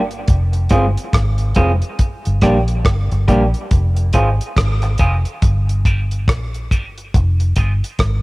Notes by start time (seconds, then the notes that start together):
Already playing: G1
0.11 closed hi-hat
0.28 F1, kick, closed hi-hat
0.53 closed hi-hat
0.69 G1 G#3 C4 F4 G#4, kick, closed hi-hat
0.97 closed hi-hat
1.13 G#1, kick, cross-stick, closed hi-hat
1.38 closed hi-hat
1.55 F1 G#3 C4 F4 G#4, kick, closed hi-hat
1.82 closed hi-hat
1.99 kick, closed hi-hat
2.25 G1, closed hi-hat
2.41 A#1 G3 A#3 D4 G4, kick, cross-stick, closed hi-hat
2.68 closed hi-hat
2.85 G1, kick, cross-stick, closed hi-hat
3.12 G1, closed hi-hat
3.28 A#1 G3 A#3 D4 G4, kick, closed hi-hat
3.54 closed hi-hat
3.71 F1, kick, closed hi-hat
3.96 closed hi-hat
4.13 G#1 G#3 C4 F4 G#4, kick, closed hi-hat
4.41 closed hi-hat
4.56 G#1, kick, cross-stick, closed hi-hat
4.82 muted clean electric guitar stroke, closed hi-hat
4.98 F1 G#3 C4 F4 G#4, kick, closed hi-hat
5.25 closed hi-hat
5.42 G1, kick, closed hi-hat
5.69 closed hi-hat
5.85 G3 A#3 D4 G4, kick, closed hi-hat
6.11 closed hi-hat
6.28 A#1, kick, cross-stick, closed hi-hat
6.54 closed hi-hat
6.71 G1 G3 A#3 D4 G4, kick, closed hi-hat
6.98 closed hi-hat
7.14 F1, kick, closed hi-hat
7.40 closed hi-hat
7.56 G1 G#3 C4 F4 G#4, kick, closed hi-hat
7.84 closed hi-hat
7.99 G#1, kick, cross-stick, closed hi-hat